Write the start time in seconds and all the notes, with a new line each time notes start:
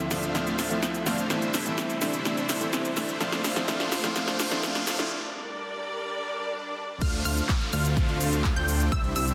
Already playing: D2 D3 F3 C4 E5, riser
0.10 F3 A3 C4 D4 F4 C5 F5, snare, open hi-hat, shaker
0.23 closed hi-hat, shaker
0.34 F3 A3 C4 D4 F4 C5 F5, snare, closed hi-hat, shaker
0.47 closed hi-hat, shaker
0.59 A3 D4 F4 C5 F5, snare, open hi-hat, shaker
0.70 F3 A3 C4 E4, closed hi-hat, shaker
0.83 snare, closed hi-hat, shaker
0.94 closed hi-hat, shaker
1.06 F3 A3 C4 D4 F4 C5 F5, snare, open hi-hat, shaker
1.18 closed hi-hat, shaker
1.29 C3 E3 G3 A3 C4 D4 E4 C5 E5, snare, closed hi-hat, shaker
1.42 closed hi-hat, shaker
1.54 A3 D4 E4 C5 E5, snare, open hi-hat, shaker
1.65 E3 A3 C4 E4, closed hi-hat, shaker
1.78 snare, closed hi-hat, shaker
1.90 closed hi-hat, shaker
2.01 E3 A3 C4 D4 E4 C5 E5, snare, open hi-hat, shaker
2.13 closed hi-hat, shaker
2.25 E3 A3 C4 D4 E4 C5 E5, snare, closed hi-hat, shaker
2.37 closed hi-hat, shaker
2.49 A3 D4 E4 C5 E5, snare, open hi-hat, shaker
2.60 E3 A3 C4 E4, closed hi-hat, shaker
2.73 snare, closed hi-hat, shaker
2.85 closed hi-hat, shaker
2.96 E3 A3 C4 D4 E4 C5 E5, snare, open hi-hat, shaker
3.09 closed hi-hat, shaker
3.20 A#2 F3 A3 A#3 C4 D4 F4 C5 F5, snare, closed hi-hat, shaker
3.32 snare, closed hi-hat, shaker
3.44 A3 D4 F4 C5 F5, snare, open hi-hat, shaker
3.56 F3 A3 C4 E4, snare, closed hi-hat, shaker
3.68 F3 A3 C4 D4 F4 C5 F5, snare, closed hi-hat, shaker
3.80 snare, closed hi-hat, shaker
3.92 A3 D4 F4 C5 F5, snare, open hi-hat, shaker
4.03 F3 A3 C4 E4, snare, closed hi-hat, shaker
4.15 F3 A3 C4 D4 F4 C5 F5, snare, closed hi-hat, shaker
4.28 snare, closed hi-hat, shaker
4.40 A3 D4 F4 C5 F5, snare, open hi-hat, shaker
4.51 F3 A3 C4 E4, snare, closed hi-hat, shaker
4.63 F3 A3 C4 D4 F4 C5 F5, snare, closed hi-hat, shaker
4.75 snare, closed hi-hat, shaker
4.87 A3 D4 F4 C5 F5, snare, open hi-hat, shaker
4.99 F3 A3 C4 E4, snare, closed hi-hat, shaker
5.11 G2 G3 A#4 D5
6.06 swell
7.01 D2 D3 A3 C4 D4 F4 C5 F5 F6, kick, closed hi-hat, crash, downlifter, shaker
7.13 closed hi-hat
7.25 D2 A3 D4 F4 C5 F5 F6, open hi-hat, shaker
7.37 closed hi-hat, shaker
7.49 kick, clap, closed hi-hat, shaker
7.61 closed hi-hat
7.73 D2 A3 D4 F4 C5 F5 F6, open hi-hat, shaker
7.85 closed hi-hat, shaker
7.97 kick, closed hi-hat, shaker
8.09 closed hi-hat
8.21 open hi-hat, shaker
8.33 closed hi-hat, shaker
8.44 kick, clap, closed hi-hat, shaker
8.56 D2 A3 D4 F4 C5 G5 G6, closed hi-hat
8.68 open hi-hat, shaker
8.80 closed hi-hat, shaker
8.92 C2 C3 G3 D4 G4 C5 E6, kick, closed hi-hat, shaker
9.04 closed hi-hat
9.16 C2 G3 D4 E4 C5 E5 E6, open hi-hat, shaker
9.28 closed hi-hat, shaker